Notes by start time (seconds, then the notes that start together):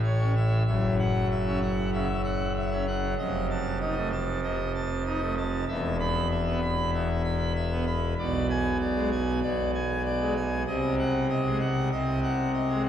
Already playing: A1 A2
0.04 C#5
0.20 C#4
0.36 E5
0.67 F#1 F#2 E5
0.99 F#5
1.30 E5
1.46 C#4
1.62 F#5
1.93 C#3 E5
2.24 F#5
2.56 E5
2.72 C#4
2.87 F#5
3.19 F1 F2 D#5
3.50 A5
3.81 D#4 D#5
3.97 A3
4.12 A5
4.44 C3 D#5
4.75 A5
5.06 D#4 D#5
5.21 A3
5.37 A5
5.68 E1 E2 E5
5.99 B5
6.31 E5
6.47 B3
6.62 B5
6.94 B2 E5
7.24 B5
7.56 E5
7.71 B3
7.87 B5
8.19 B1 B2 D5
8.50 G#5
8.81 D5
8.96 G#3
9.12 G#5
9.43 B1 B2 D5
9.75 G#5
10.05 D5
10.21 G#3
10.37 G#5
10.67 C2 C3 D#5
10.99 F#5
11.30 D#5
11.45 G#3
11.60 F#5
11.92 C2 C3 D#5
12.23 F#5
12.54 D#5
12.70 G#3
12.85 F#5